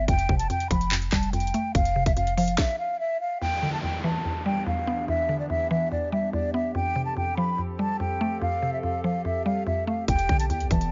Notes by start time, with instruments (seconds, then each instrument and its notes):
0.08 808-style bass F1, synth pluck F2, flute G5, kick, closed hi-hat
0.19 closed hi-hat
0.29 808-style bass F1, synth pluck C3, kick
0.38 flute A5, closed hi-hat
0.50 synth pluck F2, flute G5, closed hi-hat
0.60 closed hi-hat
0.70 808-style bass F1, synth pluck F3, flute B5, kick, closed hi-hat
0.81 closed hi-hat
0.92 synth pluck F2, clap, closed hi-hat
1.02 closed hi-hat
1.12 808-style bass F1, synth pluck G3, flute A5, kick, clap, closed hi-hat
1.23 closed hi-hat
1.33 synth pluck F2, flute G5, closed hi-hat
1.40 closed hi-hat
1.47 closed hi-hat
1.54 synth pluck A3, closed hi-hat
1.75 808-style bass F1, synth pluck F2, flute F5, kick, closed hi-hat
1.85 closed hi-hat
1.96 synth pluck C3
2.06 808-style bass F1, flute E5, kick, closed hi-hat
2.16 synth pluck F2, flute F5, closed hi-hat
2.27 closed hi-hat
2.37 synth pluck F3, flute F5, open hi-hat
2.48 closed hi-hat
2.58 flute E5, kick, snare
2.79 flute F5
3.00 flute E5
3.21 flute F5
3.41 synth pluck E2, ambient pad E3 B3 D4 G4, flute G5, downlifter
3.62 synth pluck D3
3.73 flute A5
3.83 synth pluck E2, flute G5
4.04 synth pluck E3, flute A5
4.25 synth pluck E2
4.46 synth pluck G3, flute G5
4.66 synth pluck E2, flute F5
4.87 synth pluck B3
5.08 synth pluck E2, flute E5
5.29 synth pluck D3
5.40 flute D5
5.50 synth pluck E2, flute E5
5.71 synth pluck E3, flute E5
5.91 synth pluck E2, flute D5
6.12 synth pluck G3, flute E5
6.33 synth pluck E2, flute D5
6.54 synth pluck B3, flute E5
6.75 synth pluck F2, ambient pad F3 C4 A4, flute G5
6.96 synth pluck C3
7.05 flute A5
7.17 synth pluck F2, flute G5
7.37 synth pluck F3, flute B5
7.58 synth pluck F2
7.79 synth pluck G3, flute A5
8.00 synth pluck F2, flute G5
8.21 synth pluck A3
8.42 synth pluck F2, flute F5
8.62 synth pluck C3
8.73 flute E5
8.83 synth pluck F2, flute F5
9.04 synth pluck F3, flute F5
9.25 synth pluck F2, flute E5
9.45 synth pluck G3, flute F5
9.67 synth pluck F2, flute E5
9.87 synth pluck A3, flute F5
10.08 808-style bass E1, synth pluck E2, ambient pad E3 B3 D5, flute G5, kick, closed hi-hat
10.19 closed hi-hat
10.29 808-style bass B1, synth pluck D3, kick
10.39 flute A5, closed hi-hat
10.49 synth pluck E2, 808-style bass E2, flute G5, closed hi-hat
10.60 808-style bass B1, closed hi-hat
10.71 808-style bass E1, synth pluck E3, flute A5, kick, closed hi-hat
10.81 closed hi-hat